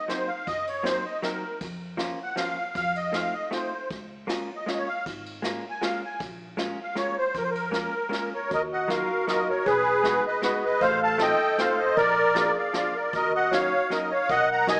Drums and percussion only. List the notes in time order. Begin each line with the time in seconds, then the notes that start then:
0.09 snare, ride
0.47 kick, ride
0.67 ride
0.86 snare, ride
1.23 snare, ride
1.61 kick, ride
1.99 snare, ride
2.37 snare, ride
2.75 kick, ride
2.96 ride
3.14 snare, ride
3.52 snare, ride
3.90 kick, ride
4.29 snare, ride
4.68 snare, ride
5.06 kick, ride
5.26 ride
5.44 snare, ride
5.82 snare, ride
6.20 kick, ride
6.58 snare, ride
6.96 snare, ride
7.35 kick, ride
7.55 ride
7.74 snare, ride
8.13 snare, ride
8.51 kick, closed hi-hat
8.90 snare, closed hi-hat
9.28 snare, closed hi-hat
9.66 kick, closed hi-hat
10.04 snare, closed hi-hat
10.43 snare, closed hi-hat
10.81 kick, closed hi-hat
11.19 snare, closed hi-hat
11.58 snare, closed hi-hat
11.97 kick, closed hi-hat
12.35 snare, closed hi-hat
12.74 snare, closed hi-hat
13.13 kick, closed hi-hat
13.53 snare, closed hi-hat
13.91 snare, closed hi-hat
14.29 kick, closed hi-hat
14.68 snare, closed hi-hat